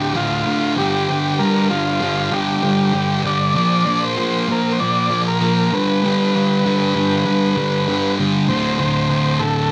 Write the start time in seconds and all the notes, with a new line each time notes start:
Already playing: D2 A2 D3 G4
0.15 D2 A2 D3 F4
0.45 D2 A2 D3
0.77 G2 D3 G3 G4
1.09 G2 D3 G3
1.39 G2 D3 G3 A#4
1.69 G2 D3 G3 F4
2.01 G2 D3 G3
2.32 G2 D3 G3 G4
2.63 G2 D3 G3
2.93 G2 D3 G3
3.23 G2 D3 G3 D5
3.55 A#2 F3 A#3 D5
3.86 A#2 F3 A#3
4.04 C5
4.18 A#2 F3 A#3
4.48 A#2 F3 A#3 A#4
4.72 C5
4.80 A#2 F3 A#3 D5
5.10 A#2 F3 A#3
5.28 A#4
5.42 A#2 F3 A#3
5.72 G2 D3 G3 B4
6.03 G2 D3 G3
6.35 G2 D3 G3
6.65 G2 D3 G3
6.95 G2 D3 G3
7.26 G2 D3 G3
7.56 G2 D3 G3
7.87 G2 D3 G3
8.18 G2 D3 G3
8.48 D2 A2 D3 C5
8.79 D2 A2 D3 C5
9.09 D2 A2 D3
9.40 D2 A2 D3 A4